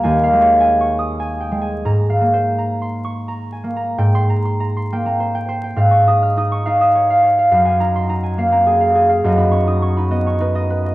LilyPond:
<<
  \new Staff \with { instrumentName = "Harp" } { \time 3/4 \key aes \major \tempo 4 = 103 << { r4 \tuplet 3/2 { r4 ees'''8~ } ees'''16 r8. | r4 \tuplet 3/2 { r4 des'''8~ } des'''16 r8. | r16 c'''2~ c'''8. | r8. f'''8 r4. r16 |
r8. c'''8 r4. r16 | r8. ees'''8 r4. r16 | } \\ { \tuplet 3/2 { <ees'' aes'' bes''>8 f''8 des''8 aes''8 des'''4 aes''8 g''8 aes''8 } | \tuplet 3/2 { bes''8 f''8 c''8 bes''8 c'''4 bes''8 aes''8 bes''8 } | g''8 bes''16 c'''16 bes''16 c'''16 g''16 bes''16 c''16 g''16 c''16 g''16 | f''16 des'''16 ees'''8 ees'''16 des'''16 f''16 ees'''16 des''16 f''16 des''16 f''16 |
f''16 aes''16 bes''8 bes''16 aes''16 f''16 bes''16 aes'16 f''16 aes'16 f''16 | ees''16 ces'''16 des'''8 des'''16 ces'''16 ees''16 des'''16 ces''16 ees''16 ces''16 ees''16 | } >> }
  \new Staff \with { instrumentName = "Harp" } { \time 3/4 \key aes \major <ees, bes>8 aes2 aes8 | aes,8 bes2 bes8 | aes,4. bes16 c'8 r8. | aes,8 ees'8 ees'8 ees'4. |
ges,8 ees'8 ees'8 bes16 c'8 r8. | ges,16 ees'16 des'16 ees'16 des'16 ees'16 ces'16 des'16 ees'4 | }
>>